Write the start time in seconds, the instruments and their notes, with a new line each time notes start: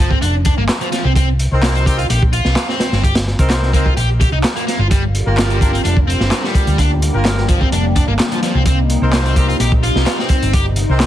Already playing: fingered electric bass G1
0.00 distorted electric guitar F3
0.10 distorted electric guitar C4, kick
0.22 fingered electric bass F1, distorted electric guitar D4, closed hi-hat
0.45 distorted electric guitar D4, kick, closed hi-hat
0.58 fingered electric bass G1, distorted electric guitar A#3
0.69 snare, clap, closed hi-hat
0.81 distorted electric guitar F3, closed hi-hat
0.92 distorted electric guitar F3, snare, closed hi-hat
1.05 fingered electric bass C2, distorted electric guitar C4
1.16 distorted electric guitar C4, kick, closed hi-hat
1.39 closed hi-hat
1.52 fingered electric bass C2, horn section C4 D#4 A#4 C5
1.63 distorted electric guitar A#3, snare, clap, closed hi-hat
1.75 distorted electric guitar C4, closed hi-hat
1.86 horn section C4 D#4 A#4 C5, distorted electric guitar G4, kick, closed hi-hat
1.99 distorted electric guitar F4, closed hi-hat
2.10 fingered electric bass A#1, distorted electric guitar G4, closed hi-hat
2.23 kick
2.33 distorted electric guitar F4, closed hi-hat
2.45 fingered electric bass C2, snare
2.56 snare, clap, closed hi-hat
2.68 distorted electric guitar C4, snare
2.80 snare, closed hi-hat
2.92 fingered electric bass G1, snare
3.03 distorted electric guitar G4, kick, closed hi-hat
3.15 snare, closed hi-hat
3.27 snare
3.39 fingered electric bass C2, horn section C4 D#4 A#4 C5, kick, closed hi-hat
3.50 snare, clap, closed hi-hat
3.62 snare
3.73 distorted electric guitar A#3, horn section C4 D#4 A#4 C5, kick, closed hi-hat
3.86 distorted electric guitar F4, kick
3.97 fingered electric bass A#1, distorted electric guitar G4, closed hi-hat
4.20 distorted electric guitar G4, kick, closed hi-hat
4.32 fingered electric bass C2, distorted electric guitar D#4
4.43 snare, clap, closed hi-hat
4.56 distorted electric guitar A#3, closed hi-hat
4.67 distorted electric guitar A#3, snare, closed hi-hat
4.79 fingered electric bass G1, distorted electric guitar F4
4.90 analog synth pad D3 G3 A#3 F4, distorted electric guitar G3, kick, closed hi-hat
5.15 closed hi-hat
5.26 fingered electric bass G1, horn section A#3 F4 G4 A#4
5.37 distorted electric guitar F3, snare, clap, closed hi-hat
5.50 distorted electric guitar G3, closed hi-hat
5.61 horn section A#3 F4 G4 A#4, distorted electric guitar D4, kick, closed hi-hat
5.73 distorted electric guitar C4, closed hi-hat
5.84 fingered electric bass F1, distorted electric guitar D4, closed hi-hat
5.97 kick
6.07 distorted electric guitar C4, closed hi-hat
6.20 fingered electric bass G1, snare
6.31 snare, clap, closed hi-hat
6.44 distorted electric guitar G3, snare
6.55 kick, closed hi-hat
6.67 fingered electric bass D2, closed hi-hat
6.78 distorted electric guitar D4, analog synth pad G4, kick, closed hi-hat
7.02 closed hi-hat
7.14 fingered electric bass G1, horn section A#3 F4 G4 A#4
7.25 snare, clap, closed hi-hat
7.37 snare
7.48 distorted electric guitar F3, kick, closed hi-hat
7.61 distorted electric guitar C4, kick
7.72 fingered electric bass F1, distorted electric guitar D4, closed hi-hat
7.96 distorted electric guitar D4, kick, closed hi-hat
8.08 fingered electric bass G1, distorted electric guitar A#3
8.19 snare, clap, closed hi-hat
8.32 distorted electric guitar F3, closed hi-hat
8.42 distorted electric guitar F3, snare, closed hi-hat
8.55 fingered electric bass C2, distorted electric guitar C4
8.66 analog synth pad C3 D#4, distorted electric guitar C4, kick, closed hi-hat
8.90 closed hi-hat
9.02 fingered electric bass C2, horn section C4 D#4 A#4 C5
9.13 distorted electric guitar A#3, snare, clap, closed hi-hat
9.25 distorted electric guitar C4, closed hi-hat
9.36 horn section C4 D#4 A#4 C5, distorted electric guitar G4, kick, closed hi-hat
9.49 distorted electric guitar F4, closed hi-hat
9.59 fingered electric bass A#1, distorted electric guitar G4, closed hi-hat
9.72 kick
9.83 distorted electric guitar F4, closed hi-hat
9.95 fingered electric bass C2, snare
10.06 snare, clap, closed hi-hat
10.19 distorted electric guitar C4, snare
10.29 kick, closed hi-hat
10.42 fingered electric bass G1, closed hi-hat
10.53 distorted electric guitar G4, kick, closed hi-hat
10.76 closed hi-hat
10.89 fingered electric bass C2, horn section C4 D#4 A#4 C5
11.00 snare, clap, closed hi-hat